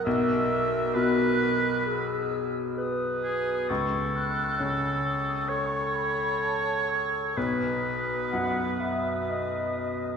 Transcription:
Already playing: clarinet A#4
0.05 grand piano B1, oboe E5, flute section E6
0.95 grand piano B2, oboe B4, flute section F#6
1.87 clarinet G#4, flute section E6
2.78 clarinet B4, flute section D#6
3.24 oboe G#4
3.69 grand piano C#2, oboe A4, flute section C#6
4.15 flute section F#6
4.59 grand piano C#3, clarinet C#5, flute section E6
5.05 flute section D#6
5.49 clarinet A4, oboe C#5, flute section C#6
5.94 flute section B5
6.40 flute section A5
6.88 flute section E6
7.35 grand piano B1, clarinet B4, oboe B4, flute section D#6
8.32 grand piano F#2, clarinet F#5
8.81 clarinet E5
9.30 clarinet D#5
9.77 clarinet D#5

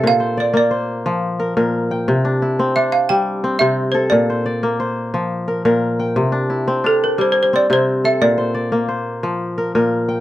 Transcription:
Already playing: kora C4 D4 A4
0.04 kora A#2, balafon F5
0.20 kora C5
0.37 kora D5, balafon D5
0.54 kora A#3, balafon D5
0.71 kora C5
1.06 kora F3
1.40 kora A#4
1.57 kora A#2 A#4
1.91 kora G5
2.08 kora C3
2.25 kora D4
2.42 kora E4
2.59 kora C4
2.76 kora D4, balafon E5
2.92 balafon F5
3.09 kora G3, balafon G5
3.44 kora C4
3.59 kora C3 C4, balafon E5
3.92 kora A4, balafon C5
4.10 kora A#2, balafon D5
4.30 kora C5
4.46 kora D5
4.63 kora A#3
4.80 kora C5
5.14 kora F3
5.48 kora A#4
5.65 kora A#2 A#4
6.00 kora G5
6.16 kora C3
6.32 kora D4
6.50 kora E4
6.68 kora C4
6.84 kora D4, balafon A4
7.04 balafon A#4
7.18 kora G3, balafon C5
7.32 balafon C5
7.43 balafon C5
7.53 kora C4, balafon D5
7.70 kora C3 C4, balafon C5
8.04 kora A4, balafon E5
8.22 kora A#2, balafon D5
8.38 kora C5
8.54 kora D5
8.72 kora A#3
8.89 kora C5
9.23 kora F3
9.58 kora A#4
9.75 kora A#2 A#4
10.09 kora G5

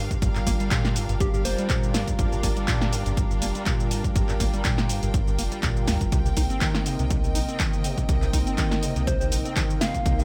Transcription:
Already playing: analog synth pad G3 F4 A#4, string section D4 A#4 F5 G5
0.11 acid bass G2, kick, closed hi-hat, shaker
0.22 sub bass G1, acid bass G2, kick, closed hi-hat, shaker
0.35 acid bass G2, clap, shaker
0.47 sub bass G1, acid bass A#3, kick, open hi-hat, shaker
0.60 acid bass G3, closed hi-hat, shaker
0.71 acid bass A#2, kick, clap, closed hi-hat, shaker
0.85 snare, shaker
0.96 acid bass G2, open hi-hat, shaker
1.09 sub bass G1, acid bass G2, closed hi-hat, shaker
1.20 acid bass G2, soft synth lead G4, kick, closed hi-hat, shaker
1.34 acid bass G2, soft synth lead G4, shaker
1.45 sub bass F1, acid bass A#3, soft synth lead C5, open hi-hat, shaker
1.58 acid bass G3, closed hi-hat, shaker
1.70 acid bass A#2, kick, clap, closed hi-hat, shaker
1.83 shaker
1.94 acid bass G2, snare, open hi-hat, shaker
2.08 acid bass G2, kick, closed hi-hat, shaker
2.19 sub bass G1, acid bass G2, kick, closed hi-hat, shaker
2.32 acid bass G2, shaker
2.43 sub bass G1, acid bass A#3, kick, open hi-hat, shaker
2.57 acid bass G3, closed hi-hat, shaker
2.68 acid bass A#2, kick, clap, closed hi-hat, shaker
2.81 snare, shaker
2.93 acid bass G2, open hi-hat, shaker
3.06 sub bass G1, acid bass G2, closed hi-hat, shaker
3.17 acid bass G2, kick, closed hi-hat, shaker
3.31 acid bass G2, shaker
3.42 sub bass F1, acid bass A#3, open hi-hat, shaker
3.55 acid bass G3, closed hi-hat, shaker
3.66 acid bass A#2, kick, clap, closed hi-hat, shaker
3.80 shaker
3.91 acid bass G2, open hi-hat, shaker
4.04 acid bass G2, kick, closed hi-hat, shaker
4.16 sub bass G1, acid bass G2, kick, closed hi-hat, shaker
4.29 acid bass G2, clap, shaker
4.40 sub bass G1, acid bass A#3, kick, open hi-hat, shaker
4.54 acid bass G3, closed hi-hat, shaker
4.65 acid bass A#2, kick, clap, closed hi-hat, shaker
4.78 snare, shaker
4.89 acid bass G2, open hi-hat, shaker
5.03 sub bass G1, acid bass G2, closed hi-hat, shaker
5.14 acid bass G2, kick, closed hi-hat, shaker
5.27 acid bass G2, shaker
5.39 sub bass F1, acid bass A#3, open hi-hat, shaker
5.52 acid bass G3, closed hi-hat, shaker
5.63 sub bass A#1, acid bass A#2, kick, clap, closed hi-hat, shaker
5.76 shaker
5.87 sub bass D2, acid bass G2, snare, open hi-hat, shaker
6.01 sub bass F1, acid bass G2, kick, closed hi-hat, shaker
6.12 sub bass C2, acid bass C3, analog synth pad C3 A#3 D#4, string section C4, kick, closed hi-hat, shaker
6.25 acid bass C3, shaker
6.37 sub bass C2, acid bass D#4, kick, open hi-hat, shaker
6.50 acid bass C4, closed hi-hat, shaker
6.61 acid bass D#3, kick, clap, closed hi-hat, shaker
6.69 string section D#5
6.75 snare, shaker
6.86 acid bass C3, open hi-hat, shaker
6.99 sub bass C2, acid bass C3, closed hi-hat, shaker
7.10 acid bass C3, kick, closed hi-hat, shaker
7.24 acid bass C3, shaker
7.35 sub bass A#1, acid bass D#4, open hi-hat, shaker
7.48 acid bass C4, closed hi-hat, shaker
7.60 acid bass D#3, kick, clap, closed hi-hat, shaker
7.73 shaker
7.84 acid bass C3, open hi-hat, shaker
7.98 acid bass C3, kick, closed hi-hat, shaker
8.09 sub bass C2, acid bass C3, kick, closed hi-hat, shaker
8.22 acid bass C3, clap, shaker
8.33 sub bass C2, acid bass D#4, kick, open hi-hat, shaker
8.47 acid bass C4, closed hi-hat, shaker
8.58 acid bass D#3, kick, clap, closed hi-hat, shaker
8.71 snare, shaker
8.83 acid bass C3, open hi-hat, shaker
8.96 sub bass C2, acid bass C3, closed hi-hat, shaker
9.07 acid bass C3, soft synth lead C5, kick, closed hi-hat, shaker
9.20 acid bass C3, soft synth lead C5, shaker
9.32 sub bass A#1, acid bass D#4, open hi-hat, shaker
9.45 acid bass C4, closed hi-hat, shaker
9.56 acid bass D#3, kick, clap, closed hi-hat, shaker
9.70 shaker
9.81 acid bass C3, soft synth lead F5, snare, open hi-hat, shaker
9.94 acid bass C3, kick, closed hi-hat, shaker
10.06 sub bass C2, acid bass C3, kick, closed hi-hat, shaker
10.19 acid bass C3, shaker

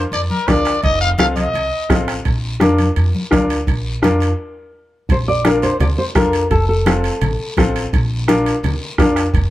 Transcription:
0.12 upright bass F2, trumpet D5, high conga, high timbale, long guiro
0.30 trumpet A#4, high conga
0.48 upright bass D2, upright piano D4 F4 A#4, trumpet D5, bombo low, bombo rim, high conga, high timbale, low timbale, short guiro
0.65 bombo rim, high timbale, short guiro
0.83 upright bass F1, trumpet D#5, bombo low, high conga, high timbale, long guiro
1.01 trumpet F5
1.18 upright bass C2, upright piano C4 F4 A4, trumpet F5, bombo rim, high conga, high timbale, short guiro
1.36 trumpet D#5, high conga, high timbale, short guiro
1.54 upright bass C2, high conga, high timbale, long guiro
1.89 upright bass A1, upright piano C4 F4 A4, bombo low, bombo rim, high conga, high timbale, low timbale, short guiro
2.08 bombo rim, high timbale, short guiro
2.25 upright bass A#1, bombo low, high conga, high timbale, long guiro
2.60 upright bass F2, upright piano D4 F4 A#4, bombo rim, high conga, high timbale, short guiro
2.78 high conga, high timbale, short guiro
2.96 upright bass F2, high conga, high timbale, long guiro
3.15 high conga
3.31 upright bass D2, upright piano D4 F4 A#4, bombo low, bombo rim, high conga, high timbale, low timbale, short guiro
3.50 high timbale, short guiro
3.67 upright bass A#1, bombo low, high conga, high timbale, long guiro
4.02 upright bass F2, upright piano D4 F4 A#4, bombo rim, high conga, high timbale, short guiro
4.20 high timbale, short guiro
5.09 upright bass A#1, nylon-string guitar C5, bombo low, high conga, high timbale, long guiro
5.28 nylon-string guitar D5
5.44 upright piano D4 F4 A#4, nylon-string guitar A#4, bombo rim, high conga, high timbale, short guiro
5.62 nylon-string guitar C5, high timbale, short guiro
5.80 upright bass D2, nylon-string guitar D5, high conga, low conga, high timbale, long guiro
5.98 nylon-string guitar C5
6.15 upright bass F2, upright piano D4 F4 A4, nylon-string guitar A#4, bombo low, bombo rim, high conga, high timbale, short guiro
6.33 high timbale, short guiro
6.51 upright bass F1, nylon-string guitar A4, bombo low, high conga, high timbale, long guiro
6.69 nylon-string guitar A4
6.86 upright piano C4 F4 A4, bombo rim, high conga, high timbale, short guiro
7.04 high timbale, short guiro
7.21 upright bass A1, high conga, low conga, high timbale, long guiro
7.57 upright bass A1, upright piano C4 F4 A4, bombo low, bombo rim, high conga, high timbale, short guiro
7.76 high timbale, short guiro
7.93 upright bass A#1, bombo low, high conga, high timbale, long guiro
8.28 upright piano D4 F4 A#4, bombo rim, high conga, high timbale, short guiro
8.46 high timbale, short guiro
8.63 upright bass D2, high conga, low conga, high timbale, long guiro
8.98 upright bass F2, upright piano D4 F4 A#4, bombo low, bombo rim, high conga, high timbale, low timbale, short guiro
9.16 bombo rim, high timbale, short guiro
9.33 upright bass F1, bombo low, high conga, high timbale, long guiro

